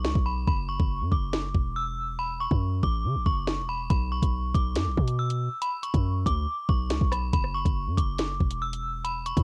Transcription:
Already playing: C#6
0.05 C#2, snare
0.15 B1, kick
0.26 B5
0.47 F#1 B5, kick
0.69 C#6
0.80 F#1, kick
1.01 F#2
1.12 F#1 D6, kick
1.33 snare
1.55 E1, kick
1.76 E6
2.19 B5
2.40 C#6
2.51 F#2, kick
2.83 A1 D6, kick
3.05 C#3
3.15 A1
3.26 F#1 C#6, kick
3.47 snare
3.58 E1
3.69 B5
3.90 B1 B5, kick, closed hi-hat
4.12 C#6
4.22 B1, kick, closed hi-hat
4.54 B1 D6, kick, closed hi-hat
4.76 F#2, snare, closed hi-hat
4.87 B1
4.97 B2, kick
5.08 closed hi-hat
5.19 E6
5.30 closed hi-hat
5.62 B5, closed hi-hat
5.83 C#6, closed hi-hat
5.94 F#2, kick, closed hi-hat
6.26 D2 D6, kick, closed hi-hat
6.69 B1 C#6, kick
6.90 C#2, snare, closed hi-hat
7.01 B1, kick
7.12 B5, cross-stick, closed hi-hat
7.33 F#1 B5, kick, closed hi-hat
7.44 cross-stick
7.54 C#6
7.65 F#1, kick, closed hi-hat
7.87 F#2
7.97 F#1 D6, kick, closed hi-hat
8.18 snare, closed hi-hat
8.40 E1, kick
8.51 closed hi-hat
8.62 E6
8.73 closed hi-hat
9.04 B5, closed hi-hat
9.26 C#6, closed hi-hat
9.37 F#2, kick, closed hi-hat

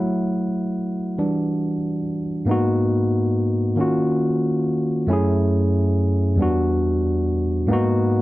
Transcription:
Already playing: F#3 A3 E4 F#4 F#5
1.18 E3 G3 D4
2.45 G#2 A#3 B3
2.49 D#4 F#4
3.76 D#3 A#3 C#4
3.80 F4 F#4
5.07 F#2 A3 C#4 E4
5.13 G#4
6.36 E2 G3 B3
6.41 D4 F#4
7.67 G#2 A#3 B3
7.71 D#4 F#4

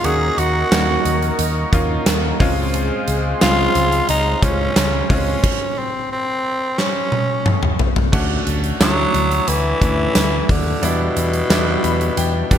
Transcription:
Already playing: C#6
0.04 D#2 A#3 C#4 D#4 F#4 G#4 A#4 D#5 A#5, closed hi-hat
0.38 D#2 F#4, closed hi-hat
0.71 D#2 A#3 C#4 D#4 F#4, snare, closed hi-hat, tambourine
1.05 D#2, closed hi-hat
1.22 closed hi-hat
1.39 D#2, closed hi-hat
1.72 D#2 A#3 C#4 D#4 F4, kick, closed hi-hat
2.06 D#2, snare, closed hi-hat, tambourine
2.40 C#2 G#3 C4 C#4 F4 G#4 C5 F5 C6, kick, open hi-hat
2.74 closed hi-hat
3.08 C#2, closed hi-hat
3.41 C#2 G#3 C4 C#4 F4, snare, closed hi-hat, tambourine
3.75 C#2, closed hi-hat
3.92 closed hi-hat
4.09 C#2 D#4, closed hi-hat
4.42 C#2 G#3 C#4 F4 C5, kick, closed hi-hat
4.76 C#2, snare, closed hi-hat, tambourine
5.09 C#2 G#3 C4 C#4 F4 C6, kick, open hi-hat
5.44 kick, crash
5.78 C4
6.12 C4
6.78 C#4, snare
7.12 high tom
7.46 mid tom
7.63 mid tom
7.79 floor tom
7.96 floor tom
8.12 D2 A3 C#4 D4 F#4, kick, crash
8.47 D2, closed hi-hat
8.64 closed hi-hat
8.80 D2 F#3 A3 C#4 D4 E4, snare, closed hi-hat, tambourine
9.14 D2, closed hi-hat
9.31 closed hi-hat
9.48 D2 E3, closed hi-hat
9.81 D2 A3 C#4 D4 E4, kick, closed hi-hat
10.15 D2, snare, closed hi-hat, tambourine
10.49 D#2 D3, kick, open hi-hat
10.82 E2 B2 G3 B3 D4 E4, closed hi-hat
11.17 E2, closed hi-hat
11.33 closed hi-hat
11.49 E2 G3 B3 D4 E4, snare, closed hi-hat, tambourine
11.84 E2 B5, closed hi-hat
12.01 closed hi-hat
12.17 E2 G5, closed hi-hat
12.51 E2 G3 B3 D4 G4, kick, closed hi-hat

